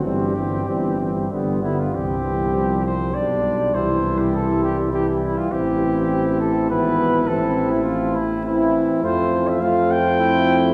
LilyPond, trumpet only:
\new Staff \with { instrumentName = "Trumpet" } { \time 3/4 \key c \major \tempo 4 = 102 g'2 r8 e'16 f'16 | g'4. c''8 d''4 | c''8. g'16 a'8 g'8 g'8 e'16 f'16 | g'4. a'8 b'4 |
a'8. e'16 f'8 e'8 e'8 r8 | c''8. e''16 f''8 g''4. | }